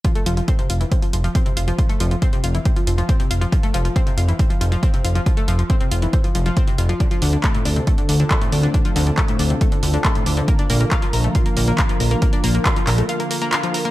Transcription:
<<
  \new Staff \with { instrumentName = "Analog synth pad" } { \time 4/4 \key f \major \tempo 4 = 138 << { r1 | r1 | r1 | r1 |
<a c' a'>1~ | <a c' a'>1 | <f bes bes'>1~ | <f bes bes'>1 | } \\ { r1 | r1 | r1 | r1 |
<d f'>1~ | <d f'>1~ | <d f'>1~ | <d f'>1 | } >> }
  \new Staff \with { instrumentName = "Synth pluck" } { \clef bass \time 4/4 \key f \major f16 a16 f16 f16 c'16 c16 f'16 e16 c'16 f16 f16 f16 c'16 c16 f'16 f16 | f16 a16 f16 f16 c'16 c16 f'16 e16 c'16 f16 f16 f16 c'16 c16 f'16 f16 | f16 a16 f16 f16 c'16 c16 f'16 e16 c'16 f16 f16 f16 c'16 c16 f'16 f16 | f16 a16 f16 f16 c'16 c16 f'16 e16 c'16 f16 f16 f16 c'16 c16 f'16 f16 |
d16 f16 d16 d16 a16 a,16 d'16 c16 a16 d16 d16 d16 a16 a,16 d'16 d16 | d16 f16 d16 d16 a16 a,16 d'16 c16 a16 d16 d16 d16 a16 a,16 d'16 d16 | bes16 d'16 bes16 bes16 f'16 f16 bes'16 a16 f'16 bes16 bes16 bes16 f'16 f16 bes'16 bes16 | bes16 d'16 bes16 bes16 f'16 f16 bes'16 a16 f'16 bes16 bes16 bes16 f'16 f16 bes'16 bes16 | }
  \new Staff \with { instrumentName = "Analog synth bass" } { \clef bass \time 4/4 \key f \major r8 f,,8 r8 f,,8 r8 f,,8 r8 f,,8 | r8 f,,8 r8 f,,8 r8 f,,8 r8 f,,8 | r8 f,,8 r8 f,,8 r8 f,,8 r8 f,,8 | r8 f,,8 r8 f,,8 r8 f,,8 r8 f,,8 |
r8 d,8 r8 d,8 r8 d,8 r8 d,8 | r8 d,8 r8 d,8 r8 d,8 r8 d,8 | r8 bes,,8 r8 bes,,8 r8 bes,,8 r8 bes,,8 | r8 bes,,8 r8 bes,,8 r2 | }
  \new DrumStaff \with { instrumentName = "Drums" } \drummode { \time 4/4 <hh bd>16 hh16 hh16 hh16 <hh bd>16 hh16 hh16 hh16 <hh bd>16 hh16 hh16 hh16 <hh bd>16 hh16 hh16 hh16 | <hh bd>16 hh16 hh16 hh16 <hh bd>16 hh16 hh16 hh16 <hh bd>16 hh16 hh16 hh16 <hh bd>16 hh16 hh16 hh16 | <hh bd>16 hh16 hh16 hh16 <hh bd>16 hh16 hh16 hh16 <hh bd>16 hh16 hh16 hh16 <hh bd>16 hh16 hh16 hh16 | <hh bd>16 hh16 hh16 hh16 <hh bd>16 hh16 hh16 hh16 <hh bd>16 hh16 hh16 hh16 <hh bd>16 hh16 hh16 hh16 |
<hh bd>16 hh16 hho16 hh16 <hc hh bd>16 hh16 hho16 hh16 <hh bd>16 hh16 hho16 hh16 <hc hh bd>16 hh16 hho16 hh16 | <hh bd>16 hh16 hho16 hh16 <hc hh bd>16 hh16 hho16 hh16 <hh bd>16 hh16 hho16 hh16 <hc hh bd>16 hh16 hho16 hh16 | <hh bd>16 hh16 hho16 hh16 <hc hh bd>16 hh16 hho16 hh16 <hh bd>16 hh16 hho16 hh16 <hc hh bd>16 hh16 hho16 hh16 | <hh bd>16 hh16 hho16 hh16 <hc hh bd>16 hh16 <hc hho>16 hh16 hh16 hh16 hho16 hh16 <hc hh>16 hh16 hho16 hh16 | }
>>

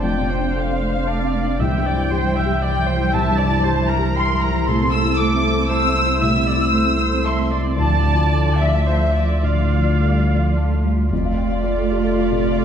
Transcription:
<<
  \new Staff \with { instrumentName = "Violin section" } { \time 3/4 \key d \minor \tempo 4 = 115 g''4 f''2 | g''2 g''4 | a''4. bes''8 c'''8 bes''8 | c'''8 e'''8 d'''4 e'''4 |
e'''2 c'''8 r8 | a''4. e''4. | d''2 r4 | d''2. | }
  \new Staff \with { instrumentName = "Viola" } { \time 3/4 \key d \minor d''8 c''4. d''4 | e''8 d''8 c''8 e''8 d''8 c''8 | e''8 d''8 c''8 bes'4. | a'2 c''4 |
e''8 d''8 c''4 e''8 d''8~ | d''2 c''8 d''8 | f''2~ f''8 r8 | f'2. | }
  \new Staff \with { instrumentName = "Felt piano" } { \time 3/4 \key d \minor \tuplet 3/2 { <f, d'>8 c8 d'8 a'8 f''8 d''8 a''8 f''8 d'8 } | \tuplet 3/2 { c,8 g,8 e'8 g'8 e''8 g'8 g''8 e''8 e'8 } | \tuplet 3/2 { c,8 g,8 e'8 g'8 e''8 g'8 g''8 e''8 e'8 } | \tuplet 3/2 { c,8 c8 e'8 a'8 e''8 a'8 a''8 e''8 e'8 } |
\tuplet 3/2 { c,8 c8 e'8 a'8 e''8 a'8 a''8 e''8 e'8 } | \tuplet 3/2 { d,8 a,8 f'8 a'8 d''8 f''8 a''8 d''8 f'8 } | \tuplet 3/2 { d,8 a,8 f'8 a'8 d''8 f''8 a''8 d''8 f'8 } | f,16 f''16 g''16 f''16 d''16 a'16 g'16 a'16 f'16 c16 d''16 a'16 | }
  \new Staff \with { instrumentName = "String section" } { \time 3/4 \key d \minor << { <f' d''>2. | <e' c''>2.~ | <e' c''>2.~ | <e' c''>2.~ |
<e' c''>2. | <f' d''>2.~ | <f' d''>2. | <f' d''>2. | } \\ { a2. | g2.~ | g2. | a2.~ |
a2.~ | a2.~ | a2. | a2. | } >> }
  \new Staff \with { instrumentName = "Cello" } { \clef bass \time 3/4 \key d \minor a16 c'16 a16 c'16 a16 c'16 a16 c'16 a16 c'16 a16 c'16 | e16 g16 e16 g16 e16 g16 e16 g16 e16 g16 e16 g16 | e16 g16 e16 g16 e16 g16 e16 g16 e16 g16 e16 g16 | a16 c'16 a16 c'16 a16 c'16 a16 c'16 a16 c'16 a16 c'16 |
a16 c'16 a16 c'16 a16 c'16 a16 c'16 a16 c'16 a16 c'16 | f16 d16 f16 d16 f16 d16 f16 d16 f16 d16 f16 d16 | f16 d16 f16 d16 g8 f8 a8 g8 | a2. | }
  \new Staff \with { instrumentName = "Sub bass" } { \clef bass \time 3/4 \key d \minor f,,2. | c,2.~ | c,2.~ | c,2.~ |
c,2. | d,2.~ | d,2. | f,,2. | }
>>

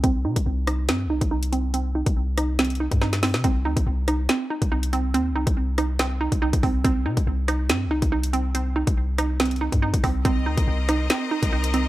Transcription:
<<
  \new Staff \with { instrumentName = "String section" } { \time 4/4 \key c \minor \tempo 4 = 141 r1 | r1 | r1 | r1 |
r1 | r1 | <c' bes' ees''>1 | }
  \new Staff \with { instrumentName = "Synth pluck" } { \time 4/4 \key c \minor c'8 ees'4 ees'8 c'8 ees'8 ees'8 c'8 | c'8 ees'4 ees'8 c'8 ees'8 ees'8 c'8 | c'8 ees'4 ees'8 c'8 ees'8 ees'8 c'8 | c'8 ees'4 ees'8 c'8 ees'8 ees'8 c'8 |
c'8 ees'4 ees'8 c'8 ees'8 ees'8 c'8 | c'8 ees'4 ees'8 c'8 ees'8 ees'8 c'8 | c'8 ees'4 ees'8 c'8 ees'8 ees'8 c'8 | }
  \new Staff \with { instrumentName = "808-style bass" } { \clef bass \time 4/4 \key c \minor c,8 c16 c,16 c,4 g,16. c,16. c,4~ c,16~ | c,8. c,2 g,4 c16 | c,8 d,16 c,16 c,4 r8. c,4~ c,16 | ees,16. c,16. c,2 c,8 c,16 c,8 |
c,8 c16 c,16 c,4 g,16. c,16. c,4~ c,16~ | c,8. c,2 g,8 c,16 c,8 | c,8 d,16 c,16 c,4 r8. c,4~ c,16 | }
  \new DrumStaff \with { instrumentName = "Drums" } \drummode { \time 4/4 <hh bd>8. <hh bd>16 r8 <hh ss>8 <hh sn>8. <hh bd>16 r16 hh16 hh8 | hh8. <hh bd>16 r8 <hh ss>8 <hh sn>32 hh32 hh32 hh16. <hh bd>16 sn16 <hh sn>16 <hho sn>16 sn16 | <hh bd>8. <hh bd>16 r8 <hh ss>8 <hh sn>8. <hh bd>16 r16 hh16 hh8 | hh8. <hh bd>16 r8 <hh ss>8 <hh sn>8. <hh bd>16 r16 <hh bd>16 <hho bd>8 |
<hh bd>8. <hh bd>16 r8 <hh ss>8 <hh sn>8. <hh bd>16 r16 hh16 hh8 | hh8. <hh bd>16 r8 <hh ss>8 <hh sn>32 hh32 hh32 hh16. <hh bd>16 r16 <hh bd>16 <hho bd ss>8 | <hh bd>8. <hh bd>16 r8 <hh ss>8 <hh sn>8. <hh bd>16 r16 hh16 hh8 | }
>>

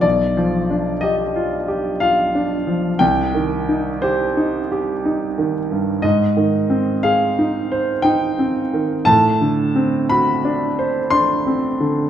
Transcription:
\new Staff \with { instrumentName = "Grand piano" } { \time 3/4 \key aes \lydian \tempo 4 = 59 << { d''4 ees''4 f''4 | g''4 c''4. r8 | ees''4 f''4 g''4 | a''4 b''4 c'''4 | } \\ { \tuplet 3/2 { b,,8 f8 d'8 g'8 f'8 g'8 f'8 d'8 f8 } | \tuplet 3/2 { c,8 ees8 ees'8 g'8 ees'8 g'8 ees'8 ees8 g,8 } | \tuplet 3/2 { aes,8 ees8 c'8 aes'8 ees'8 c''8 ees'8 c'8 ees8 } | \tuplet 3/2 { a,8 d8 c'8 fis'8 d'8 c''8 d'8 c'8 d8 } | } >> }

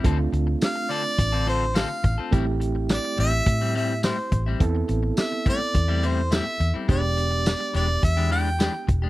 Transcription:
<<
  \new Staff \with { instrumentName = "Harmonica" } { \time 4/4 \key a \minor \tempo 4 = 105 r4 f''8 d''4 c''8 f''8. r16 | r4 d''8 e''4 e''8 c''8. r16 | r4 e''8 d''4 c''8 e''8. r16 | d''4. d''8 e''8 g''4 r8 | }
  \new Staff \with { instrumentName = "Reed electric piano" } { \time 4/4 \key a \minor <a c' d' f'>1 | <a c' e' g'>1 | <b c' e' a'>1 | <gis b d' g'>1 | }
  \new Staff \with { instrumentName = "Clean electric guitar" } { \time 4/4 \key a \minor <d c' f' a'>16 r4 r16 <d c' f' a'>16 r8 <d c' f' a'>16 <d c' f' a'>16 r16 <d c' f' a'>16 r8 <c' f' a'>16 | <a, g c' e'>16 r4 r16 <a, g c' e'>16 r8 <a, g c' e'>16 <a, g c' e'>16 r16 <a, g c' e'>16 r8 <g c' e'>16 | r4. <a, g c' e'>16 r8 <a, g c' e'>16 <a, g c' e'>16 r16 <a, g c' e'>16 r8 <g c' e'>16 | <e gis d' g'>16 r4 r16 <e gis d' g'>16 r8 <e gis d' g'>16 <e gis d' g'>16 r16 <e gis d' g'>16 r8 <gis d' g'>16 | }
  \new Staff \with { instrumentName = "Fingered electric bass" } { \clef bass \time 4/4 \key a \minor d,8 d,8 r4 a,,4. a,,16 r16 | a,,4. a,,8 a,4. a,,8 | e,8 a,,8 r4 e,4. e,16 r16 | e,,4. e,,8 e,4. e,,8 | }
  \new DrumStaff \with { instrumentName = "Drums" } \drummode { \time 4/4 <hh bd>8 hh8 <hh sn tamb>8 hh8 <hh bd>8 hh8 <hh sn tamb>8 <hh bd>8 | <hh bd>8 hh8 <hh sn tamb>8 hh8 <hh bd>8 hh8 <hh sn tamb>8 <hh bd>8 | <hh bd>8 hh8 <hh sn tamb>8 <hh bd>8 <hh bd>8 hh8 <hh sn tamb>8 hh8 | <hh bd>8 hh8 <hh sn tamb>8 hh8 <hh bd>8 hh8 <hh sn tamb>8 <hh bd>8 | }
>>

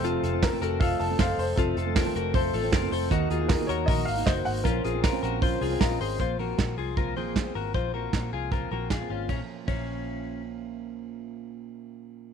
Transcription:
<<
  \new Staff \with { instrumentName = "Upright piano" } { \time 4/4 \key bes \minor \tempo 4 = 155 r4 bes'8 a'8 f''8 a''8 f''8 c''8 | a'2 r2 | r4 bes'8 des''8 ees''8 f''8 ees''8 ges''8 | bes'2 r2 |
r1 | r1 | r1 | r1 | }
  \new Staff \with { instrumentName = "Synth keys" } { \time 4/4 \key bes \minor <c' f' a' c''>8 r8 <c' a'>8 r8 <c' f' a' ees''>8 r8 <c' f' a' ees''>8 r8 | <c' f' a' c''>8 r8 <c' f' a' c''>8 r8 <c' f' a' c''>8 r8 <c' f' a' c''>8 r8 | <ees' ges' bes' ees''>8 r8 <ees' ges' bes' ees''>8 r8 <ees' ges' bes' ees''>8 r8 <ees' ges' bes' ees''>8 r8 | <des' f' bes' c''>8 r8 <des' f' bes' c''>8 r8 <des' f' bes' c''>8 r8 <des' f' bes' ees''>8 r8 |
r1 | r1 | r1 | r1 | }
  \new Staff \with { instrumentName = "Clean electric guitar" } { \time 4/4 \key bes \minor <c' f'>8 <f' a'>4 <ges' bes'>8 <f' a'>4 <a' c''>4 | <c' f'>8 <f' a'>8 <f' bes'>8 <ges' bes'>8 <a' c''>8 <f' a'>8 <f' bes'>8 <a' c''>8 | <ees' ges'>8 <f' aes'>4 <ges' bes'>8 <ges' bes'>4 <ges' c''>4 | <des' f'>8 <f' aes'>8 <f' bes'>8 <ges' bes'>8 <f' c''>8 <f' aes'>8 <f' bes'>8 <aes' c''>8 |
<f' c''>8 <ges' bes'>4 <f' aes'>8 <f' bes'>8 <aes' c''>4 <ges' bes'>8 | <f' c''>8 <ges' bes'>4 <f' aes'>8 <f' bes'>8 <ges' bes'>8 <f' aes'>8 <des' f'>8 | des'8 r8 des'2 r4 | r1 | }
  \new Staff \with { instrumentName = "Steel-string acoustic guitar" } { \time 4/4 \key bes \minor <f, c f a c' a'>8. <f a c' a'>8 <f, c f a c' a'>8. <f a c' a'>8. <f a c' a'>8 <f a c' a'>8. | <f a c' a'>8. <f a c' a'>8 <f, c f a c' a'>8. <f a c' a'>8. <f a c' a'>8 <f a c' a'>8. | <ees bes ees' ges'>8. <bes ees' ges'>8 <ees bes ees' ges'>8. <ees bes ees' ges'>8. <bes ees' ges'>8 <bes ees' ges'>8. | <f c' des' f'>8. <c' des' f'>8 <bes, f c' des' f'>8. <f c' des' f'>8. <c' des' f'>8 <c' des' f'>8. |
<f bes c' f'>8 <f bes c' f'>8 <f bes c' f'>4 <bes, f bes c' f'>8 <bes, f bes c' f'>8. <bes c' f'>8. | <f bes c' f'>8 <f bes c' f'>8 <f bes c' f'>4 <bes, f bes c' f'>8 <bes, f bes c' f'>8. <bes c' f'>8. | <bes, f bes des' f'>16 r8. <bes, f bes des' f'>2.~ | <bes, f bes des' f'>1 | }
  \new Staff \with { instrumentName = "Fingered electric bass" } { \clef bass \time 4/4 \key bes \minor f,,8 f,,8. r16 f,,4 f,,8 ges,,8 f,,8 | f,,8 f,,8. r16 f,,4 a,,8 ges,,8 f,,8 | ees,8 ees,8. r16 ees,8 bes,,8 aes,,8 ges,,8 aes,,8 | bes,,8 bes,,8. r16 bes,,4 c,8 bes,,8 aes,,8 |
bes,,4 bes,8 c,4 bes,,4 aes,,8 | bes,,4 bes,8 c,4 bes,,4 aes,,8 | bes,,8 r8 bes,,2.~ | bes,,1 | }
  \new DrumStaff \with { instrumentName = "Drums" } \drummode { \time 4/4 <hho hhp>8 <hho hhp>8 <hho hhp bd sn>8 <hho hhp>8 <hho hhp bd>8 <hho hhp>8 <hho hhp bd sn>8 <hho hhp>8 | <hho hhp bd>8 <hho hhp>8 <hho hhp bd sn>8 <hho hhp>8 <hho hhp bd>8 <hho hhp>8 <hho hhp bd sn>8 <hho hhp>8 | <hho hhp bd>8 <hho hhp>8 <hho hhp bd sn>8 <hho hhp>8 <hho hhp bd>8 <hho hhp>8 <hho hhp bd sn>8 <hho hhp>8 | <hho hhp bd>8 <hho hhp>8 <hho hhp bd sn>8 <hho hhp>8 <hho hhp bd>8 <hho hhp>8 <hho hhp bd sn>8 <hho hhp>8 |
<hh bd>8 hho8 <bd sn>8 hho8 <hh bd>8 hho8 <bd sn>8 hho8 | <hh bd>4 <bd sn>4 <hh bd>4 <bd sn>4 | <bd cymr>4 <bd cymr>4 r4 r4 | r4 r4 r4 r4 | }
>>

